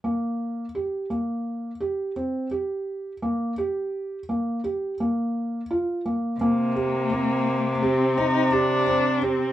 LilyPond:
<<
  \new Staff \with { instrumentName = "Cello" } { \time 9/8 \key c \minor \tempo 4. = 57 r1 r8 | r1 r8 | bes2 c'8 ees'8 d'4 c'8 | }
  \new Staff \with { instrumentName = "Felt piano" } { \time 9/8 \key c \minor bes4 g'8 bes4 g'8 c'8 g'4 | bes8 g'4 bes8 g'8 bes4 f'8 bes8 | bes8 g'8 c'4 g'8 c'8 g'8 c'8 g'8 | }
  \new Staff \with { instrumentName = "Cello" } { \clef bass \time 9/8 \key c \minor r1 r8 | r1 r8 | c1~ c8 | }
>>